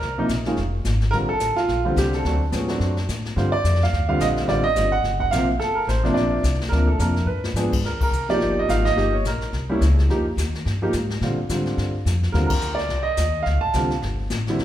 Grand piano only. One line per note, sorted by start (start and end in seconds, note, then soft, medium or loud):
0.00 0.16 A#4 medium
0.18 0.28 C3 medium
0.18 0.28 F3 medium
0.18 0.28 A#3 medium
0.18 0.29 D#4 medium
0.46 0.57 D#3 medium
0.46 0.56 G#3 medium
0.46 0.57 C#4 medium
0.46 0.57 F4 medium
1.11 1.28 D3 medium
1.11 1.28 G3 medium
1.11 1.28 C4 medium
1.11 1.29 F4 medium
1.11 1.16 A#4 loud
1.29 1.55 A4 loud
1.56 1.83 F4 loud
1.85 2.22 D3 medium
1.85 2.23 G3 medium
1.85 2.23 C4 medium
1.85 1.97 F4 medium
1.98 2.14 G4 medium
2.15 2.40 A4 medium
2.25 2.40 F#3 medium
2.25 2.40 A3 medium
2.25 2.40 C4 medium
2.25 2.41 D4 medium
2.52 2.67 F3 medium
2.52 2.67 G#3 soft
2.52 2.67 B3 medium
2.52 2.68 C#4 medium
2.68 2.93 F#3 medium
2.68 2.94 A3 medium
2.68 2.94 C4 medium
2.68 2.94 D4 medium
3.36 3.51 D3 medium
3.36 3.51 G3 medium
3.36 3.51 C4 medium
3.36 3.52 F4 medium
3.36 3.52 C5 medium
3.52 3.81 D5 loud
3.83 4.07 F5 medium
4.09 4.46 D3 medium
4.09 4.46 G3 medium
4.09 4.46 C4 medium
4.09 4.47 F4 medium
4.09 4.21 F5 loud
4.21 4.26 D#5 loud
4.48 4.63 D3 medium
4.48 4.63 G3 medium
4.48 4.63 C4 medium
4.48 4.63 F4 medium
4.48 4.64 D5 medium
4.64 4.90 D#5 loud
4.76 4.91 D3 soft
4.76 4.91 G3 soft
4.76 4.91 C4 soft
4.76 4.91 F4 soft
4.92 5.19 F#5 loud
5.20 5.32 F#5 medium
5.31 5.47 C3 medium
5.31 5.47 F3 medium
5.31 5.48 A#3 medium
5.31 5.48 C4 medium
5.31 5.47 F5 loud
5.60 5.77 A4 loud
5.75 5.88 A#4 medium
5.88 6.14 C5 medium
6.03 6.41 C3 medium
6.03 6.42 F3 medium
6.03 6.42 A#3 medium
6.03 6.42 D4 medium
6.14 6.56 D5 medium
6.69 6.87 C3 medium
6.69 6.87 F3 medium
6.69 6.87 D4 medium
6.69 6.87 A#4 medium
6.73 6.87 A#3 medium
6.88 7.00 A4 medium
6.99 7.15 C3 medium
6.99 7.14 F3 soft
6.99 7.15 A#3 soft
6.99 7.15 D4 medium
6.99 7.26 A#4 medium
7.26 7.53 B4 medium
7.56 7.71 F3 medium
7.56 7.71 G#3 medium
7.56 7.72 B3 medium
7.56 7.71 D4 medium
7.86 8.00 A#4 medium
8.03 8.28 A#4 medium
8.29 8.66 F3 medium
8.29 8.67 A#3 medium
8.29 8.67 D#4 medium
8.29 8.67 G4 medium
8.29 8.58 D5 loud
8.59 8.70 D#5 medium
8.68 8.95 F3 medium
8.68 8.96 A#3 medium
8.68 8.95 D#4 medium
8.68 8.97 F4 medium
8.68 8.86 F5 loud
8.85 9.14 D#5 loud
8.96 9.11 F3 medium
8.96 9.12 A#3 medium
8.96 9.12 D#4 medium
8.96 9.12 G4 medium
9.14 9.24 C#5 medium
9.27 9.67 A#4 medium
9.69 9.80 G3 medium
9.69 9.80 A#3 medium
9.69 9.81 C#4 medium
9.69 9.81 E4 medium
10.09 10.24 F3 medium
10.09 10.25 A#3 medium
10.09 10.25 D#4 medium
10.09 10.25 G4 medium
10.82 10.92 F3 medium
10.82 10.93 A#3 medium
10.82 10.93 D#4 medium
10.82 10.93 G4 medium
11.23 11.37 D3 medium
11.23 11.37 G3 medium
11.23 11.37 C4 medium
11.23 11.37 F4 medium
11.50 11.91 D3 medium
11.50 11.92 G3 medium
11.50 11.92 C4 medium
11.50 11.92 F4 medium
12.32 12.49 D3 medium
12.32 12.49 G3 medium
12.32 12.49 C4 medium
12.32 12.49 F4 medium
12.32 12.45 A#4 medium
12.47 12.78 A#4 medium
12.75 13.06 D5 medium
13.03 13.46 D#5 medium
13.43 13.60 F5 medium
13.61 13.99 A5 loud
13.76 13.90 D3 medium
13.76 13.90 G3 medium
13.76 13.90 C4 medium
13.76 13.90 F4 medium
14.49 14.59 D3 medium
14.49 14.59 G3 medium
14.49 14.59 C4 medium
14.49 14.59 E4 medium